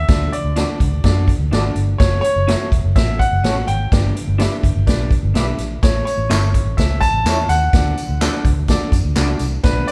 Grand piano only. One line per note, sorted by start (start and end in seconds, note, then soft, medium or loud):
0.00 0.34 E5 loud
0.32 1.24 D5 medium
1.98 2.20 C#5 medium
2.21 2.67 C#5 loud
2.96 3.18 E5 medium
3.19 3.69 F#5 medium
3.67 5.07 G5 medium
5.83 6.04 C#5 medium
6.05 6.80 C#5 medium
6.77 7.00 E5 medium
7.01 7.50 A5 loud
7.49 8.41 F#5 loud
9.63 9.88 B4 medium
9.88 9.92 D5 medium